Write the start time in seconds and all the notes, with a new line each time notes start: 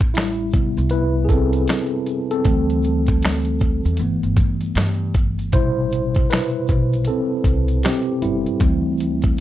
Already playing: A1
0.01 kick
0.14 G3 E4, finger snap, snare, closed hi-hat, shaker
0.51 C3 G3 B3, kick, closed hi-hat, shaker
0.77 C2, closed hi-hat, shaker
0.89 E4 B4, closed hi-hat, shaker
1.25 G#4
1.29 C4 A4, kick, closed hi-hat, shaker
1.53 closed hi-hat, shaker
1.68 finger snap, snare, closed hi-hat, shaker
2.06 closed hi-hat, shaker
2.31 C4 A4, closed hi-hat
2.45 D2 E3 G3 C4, kick, closed hi-hat, shaker
2.70 closed hi-hat
2.83 closed hi-hat, shaker
3.06 kick, closed hi-hat, shaker
3.22 finger snap, snare, closed hi-hat, shaker
3.45 closed hi-hat
3.59 kick, closed hi-hat, shaker
3.85 E2, closed hi-hat, shaker
3.97 G1 E3 A3 B3, closed hi-hat, shaker
4.23 G1, closed hi-hat
4.37 G2, kick, closed hi-hat, shaker
4.61 closed hi-hat, shaker
4.75 G2, finger snap, snare, closed hi-hat, shaker
5.14 G1, kick, closed hi-hat, shaker
5.39 closed hi-hat, shaker
5.52 A1 B2 C3 G3 E4 C5, kick, closed hi-hat, shaker
5.91 closed hi-hat, shaker
6.15 kick, closed hi-hat, shaker
6.30 E4 B4, finger snap, snare, closed hi-hat, shaker
6.67 B1, kick, closed hi-hat, shaker
6.93 closed hi-hat, shaker
7.05 A4, closed hi-hat, shaker
7.09 C4
7.44 C2, kick, closed hi-hat, shaker
7.68 closed hi-hat, shaker
7.83 C4 G4, finger snap, snare, closed hi-hat, shaker
8.22 G1 G3 E4, closed hi-hat, shaker
8.46 closed hi-hat
8.60 D2 E3 G3 C4, kick, closed hi-hat, shaker
8.98 closed hi-hat, shaker
9.22 kick, closed hi-hat, shaker
9.37 shaker